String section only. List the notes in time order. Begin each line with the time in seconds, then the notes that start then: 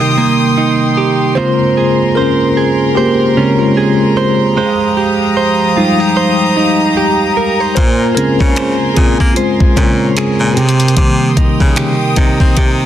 Already playing: A#4 G5 C6 D#6
1.37 A#4 A#5
4.57 F3 G4 F5 D#6
7.77 A#4 G#5 C6
10.56 A#4 G5 C6 D#6
12.16 A#5